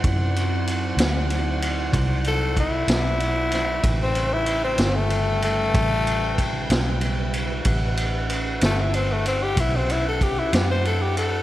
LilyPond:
<<
  \new Staff \with { instrumentName = "Saxophone section" } { \time 12/8 \key d \major \tempo 4. = 63 << { fis''1. | g''1. | fis''1. | } \\ { <c'' d''>1. | <b' e''>1.~ | <b' e''>1. | } >> }
  \new Staff \with { instrumentName = "Tenor saxophone" } { \time 12/8 \key d \major r2. r8 a'8 e'2~ | e'16 c'8 e'8 c'8 a8. a2 r4. | r4. a16 e'16 c'16 a16 c'16 g'16 e'16 c'16 e'16 a'16 g'16 e'16 g'16 c''16 a'16 g'16 a'8 | }
  \new Staff \with { instrumentName = "Tonewheel organ" } { \time 12/8 \key d \major <fis c' e'>1. | <gis d' b'>8 <cis g b'>1~ <cis g b'>4. | <cis' g' b'>1. | }
  \new Staff \with { instrumentName = "Fingered electric bass" } { \clef bass \time 12/8 \key d \major fis,4. d,4. c,4. b,,4. | a,,4. g,,4. a,,4. b,,4. | a,,4. g,,4. b,,4. fis,4. | }
  \new DrumStaff \with { instrumentName = "Drums" } \drummode { \time 12/8 <bd cymr>8 cymr8 cymr8 <cymr sn>8 cymr8 cymr8 <bd cymr>8 cymr8 <bd cymr>8 <cymr sn>8 cymr8 <cymr sn>8 | <bd cymr>8 cymr8 cymr8 <cymr sn>8 cymr8 cymr8 <bd cymr>8 cymr8 <bd cymr>8 <cymr sn>8 cymr8 cymr8 | <bd cymr>8 cymr8 cymr8 <cymr sn>8 cymr8 cymr8 <bd cymr>8 cymr8 <bd cymr>8 <cymr sn>8 cymr8 cymr8 | }
>>